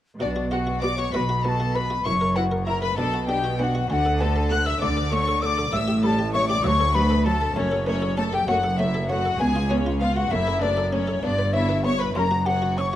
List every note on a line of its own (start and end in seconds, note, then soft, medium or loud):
0.20 1.02 B1 loud
0.20 1.02 B2 medium
0.20 1.00 B2 medium
0.20 0.49 D4 medium
0.20 0.29 F#4 medium
0.20 0.29 D5 loud
0.20 0.53 D5 loud
0.36 0.52 F#4 medium
0.51 0.82 F#4 medium
0.51 0.60 F#4 medium
0.51 0.67 G4 soft
0.51 0.59 F#5 medium
0.51 0.81 F#5 medium
0.67 0.83 F#4 medium
0.81 0.98 B3 medium
0.81 0.91 F#4 medium
0.81 0.98 D5 loud
0.81 0.97 D6 loud
0.81 0.97 D6 medium
0.97 1.14 F#4 medium
0.97 1.13 C#5 loud
0.97 1.12 C#6 medium
0.97 1.13 C#6 loud
1.13 1.95 B1 medium
1.13 1.94 B2 medium
1.13 1.93 B2 medium
1.13 1.21 F#4 medium
1.13 1.21 B4 loud
1.13 1.30 B4 medium
1.13 1.44 B5 medium
1.13 1.44 B5 loud
1.13 1.17 C#6 medium
1.29 1.45 F#4 medium
1.43 1.60 B3 medium
1.43 1.52 F#4 medium
1.43 1.74 A4 medium
1.43 1.74 A5 loud
1.43 1.50 B5 medium
1.49 1.76 A5 loud
1.60 1.76 F#4 medium
1.74 1.83 F#4 medium
1.74 2.06 B4 medium
1.74 1.91 B4 medium
1.74 2.05 B5 loud
1.74 2.07 B5 medium
1.90 2.06 F#4 medium
2.04 2.87 F#1 medium
2.04 2.87 F#2 medium
2.04 2.85 F#2 medium
2.04 2.14 E4 medium
2.04 2.36 C#5 medium
2.04 2.12 C#6 loud
2.04 2.37 C#6 loud
2.21 2.37 A#4 medium
2.35 2.44 E4 medium
2.35 2.45 F#4 medium
2.35 2.51 B4 soft
2.35 2.43 F#5 loud
2.35 2.66 F#5 medium
2.51 2.68 A#4 medium
2.66 2.83 E4 medium
2.66 2.75 E4 medium
2.66 2.82 A#4 loud
2.66 2.82 A#5 loud
2.66 2.84 A#5 medium
2.82 2.98 A#4 medium
2.82 2.98 B4 loud
2.82 2.99 B5 medium
2.82 2.98 B5 loud
2.97 3.79 B1 medium
2.97 3.79 B2 medium
2.97 3.76 B2 medium
2.97 3.06 D4 medium
2.97 3.28 A4 loud
2.97 3.28 A5 loud
3.14 3.29 F#4 medium
3.28 3.37 D4 medium
3.28 3.44 G4 medium
3.28 3.59 G4 medium
3.28 3.58 G5 loud
3.28 3.58 G5 medium
3.44 3.60 F#4 medium
3.58 3.75 B3 medium
3.58 3.67 D4 medium
3.58 3.90 F#4 medium
3.58 3.88 F#5 medium
3.58 3.64 G#5 medium
3.63 3.89 F#5 medium
3.75 3.90 F#4 medium
3.89 4.70 D2 loud
3.89 4.71 D3 loud
3.89 4.68 D3 medium
3.89 3.98 A3 medium
3.89 3.99 F#4 medium
3.89 4.19 F#5 loud
3.89 4.22 F#5 loud
3.89 3.94 G#5 loud
4.05 4.21 A4 medium
4.19 4.29 A3 medium
4.19 4.50 A4 loud
4.19 4.36 B4 medium
4.19 4.50 A5 loud
4.19 4.50 A5 medium
4.36 4.52 A4 medium
4.50 4.59 A3 medium
4.50 4.67 D4 medium
4.50 4.57 F#5 loud
4.50 4.66 F#6 loud
4.50 4.67 F#6 loud
4.66 4.82 A4 medium
4.66 4.81 E5 loud
4.66 4.81 E6 loud
4.66 4.81 E6 medium
4.80 5.62 D2 medium
4.80 5.62 D3 medium
4.80 5.60 D3 medium
4.80 4.89 A3 medium
4.80 5.12 D5 loud
4.80 4.98 D5 medium
4.80 5.11 D6 loud
4.80 4.88 D6 loud
4.97 5.13 A4 medium
5.11 5.20 A3 medium
5.11 5.28 D4 medium
5.11 5.43 C#5 medium
5.11 5.42 C#6 loud
5.11 5.43 C#6 loud
5.28 5.43 A4 medium
5.42 5.50 A3 medium
5.42 5.58 D5 medium
5.42 5.73 D5 medium
5.42 5.72 D6 loud
5.42 5.47 E6 loud
5.46 5.72 D6 loud
5.58 5.73 A4 medium
5.72 6.53 A1 loud
5.72 6.51 A2 medium
5.72 6.53 A2 loud
5.72 5.81 G3 medium
5.72 6.04 E5 medium
5.72 6.03 E6 loud
5.72 5.79 E6 loud
5.88 6.04 G4 medium
6.03 6.11 G3 medium
6.03 6.19 A4 medium
6.03 6.12 A4 medium
6.03 6.33 A5 loud
6.03 6.07 B5 medium
6.19 6.35 G4 medium
6.33 6.42 G3 medium
6.33 6.50 A3 medium
6.33 6.49 C#5 loud
6.33 6.48 C#6 loud
6.48 6.64 G4 medium
6.48 6.64 D5 loud
6.48 6.65 D6 loud
6.48 6.64 D6 loud
6.64 7.45 D2 loud
6.64 7.43 D2 medium
6.64 6.72 F#3 medium
6.64 6.95 C#5 loud
6.64 6.94 C#6 loud
6.64 6.96 C#6 loud
6.64 6.68 E6 loud
6.80 6.96 A4 medium
6.94 7.03 F#3 medium
6.94 7.10 B4 medium
6.94 7.25 B4 loud
6.94 7.25 B5 loud
6.94 7.27 B5 loud
7.10 7.26 A4 medium
7.25 7.33 F#3 medium
7.25 7.42 D4 medium
7.25 7.56 A4 loud
7.25 7.55 A5 loud
7.41 7.56 A4 medium
7.55 8.37 F#1 loud
7.55 8.37 F#2 loud
7.55 8.35 F#2 medium
7.55 7.64 A3 medium
7.55 7.85 C#4 loud
7.55 7.86 C#5 loud
7.72 7.88 A4 medium
7.87 7.95 A3 medium
7.87 8.17 C#4 loud
7.87 8.02 B4 medium
7.87 8.17 C#5 loud
7.87 7.94 C#5 medium
8.02 8.18 A4 medium
8.17 8.25 A3 medium
8.17 8.33 C#4 medium
8.17 8.32 A4 loud
8.17 8.23 A5 loud
8.17 8.24 A5 loud
8.33 8.48 G4 medium
8.33 8.49 A4 medium
8.33 8.47 G5 loud
8.33 8.48 G5 medium
8.47 9.28 F#1 loud
8.47 9.29 F#2 medium
8.47 9.26 F#2 medium
8.47 8.56 A3 medium
8.47 8.56 F#4 loud
8.47 8.64 C#5 medium
8.47 8.78 F#5 loud
8.47 8.77 F#5 loud
8.64 8.79 A4 medium
8.78 8.86 A3 medium
8.78 8.95 C#4 medium
8.78 9.08 E4 medium
8.78 9.09 E5 loud
8.78 9.11 E5 loud
8.94 9.10 A4 medium
9.09 9.17 A3 medium
9.09 9.39 F#4 loud
9.09 9.25 C#5 medium
9.09 9.39 F#5 loud
9.25 9.40 A4 medium
9.39 10.20 C#2 loud
9.39 10.18 C#2 medium
9.39 9.48 B3 medium
9.39 9.70 G#4 loud
9.39 9.70 G#5 loud
9.39 9.46 G#5 loud
9.55 9.71 F4 medium
9.70 9.79 B3 medium
9.70 10.00 C#4 medium
9.70 9.86 F#4 medium
9.70 10.00 C#5 loud
9.70 9.77 C#5 medium
9.86 10.02 F4 medium
10.00 10.09 B3 medium
10.00 10.17 B3 medium
10.00 10.16 F4 medium
10.00 10.15 F5 loud
10.00 10.16 F5 loud
10.16 10.31 F4 medium
10.16 10.31 F#4 medium
10.16 10.33 F#5 medium
10.16 10.31 F#5 loud
10.31 11.12 F#1 loud
10.31 11.10 F#2 medium
10.31 11.12 F#2 loud
10.31 10.40 A3 medium
10.31 10.62 E4 loud
10.31 10.62 E5 loud
10.31 10.63 E5 loud
10.47 10.63 A4 medium
10.62 10.70 A3 medium
10.62 10.93 D4 medium
10.62 10.77 B4 medium
10.62 10.94 D5 loud
10.62 10.92 D5 loud
10.77 10.93 A4 medium
10.92 11.01 A3 medium
10.92 11.09 C#4 medium
10.92 11.23 C#4 medium
10.92 11.22 C#5 loud
10.92 11.23 C#5 loud
11.07 11.23 A4 medium
11.23 12.05 G1 loud
11.23 12.02 G2 medium
11.23 12.05 G2 loud
11.23 11.32 B3 medium
11.23 11.32 D4 loud
11.23 11.54 D5 loud
11.39 11.55 B4 medium
11.53 11.62 B3 medium
11.53 11.84 E4 loud
11.53 11.69 C#5 medium
11.53 11.86 E5 medium
11.53 11.84 E5 loud
11.69 11.85 B4 medium
11.84 12.01 B3 medium
11.84 11.93 B3 medium
11.84 12.00 C#5 loud
11.84 12.00 C#6 loud
11.84 11.99 C#6 medium
11.99 12.16 B4 medium
11.99 12.05 B5 medium
11.99 12.16 B5 medium
12.15 12.96 F#1 loud
12.15 12.96 F#2 medium
12.15 12.24 C#4 medium
12.15 12.24 A#4 loud
12.15 12.46 A#5 loud
12.15 12.20 C6 loud
12.19 12.47 A#5 loud
12.31 12.47 F#4 medium
12.46 12.55 C#4 medium
12.46 12.77 F#4 medium
12.46 12.62 G4 medium
12.46 12.77 F#5 loud
12.46 12.79 F#5 loud
12.62 12.79 F#4 medium
12.77 12.94 C#4 medium
12.77 12.86 C#4 medium
12.77 12.96 C#5 medium
12.77 12.85 C#6 loud
12.77 12.82 E6 medium
12.81 12.96 C#6 loud